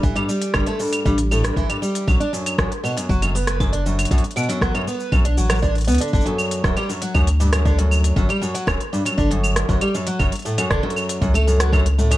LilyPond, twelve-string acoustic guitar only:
\new Staff \with { instrumentName = "Twelve-string acoustic guitar" } { \clef bass \time 4/4 \key b \minor \tempo 4 = 118 e16 g,16 g8 g,16 a16 g,8 g,16 r16 a,16 g,16 e16 g,16 g8 | fis,16 d'16 fis,8 fis,16 r16 b,16 fis,16 fis16 fis,16 b8 fis,16 d'16 fis,8 | fis,16 r16 b,16 fis,16 fis16 fis,16 b8 fis,16 d'16 fis16 fis16 d'16 r16 b16 d16 | d16 fis,8. fis,16 g16 fis,16 fis16 fis,16 r16 g,16 fis,16 d16 fis,8. |
fis,16 g16 fis,16 fis16 fis,16 r16 g,16 fis,16 d16 fis,8. fis,16 g16 fis,16 fis16 | fis,16 r16 a,16 fis,16 d16 fis,8. fis,16 a16 fis,16 fis16 fis,16 r16 a,16 fis,16 | }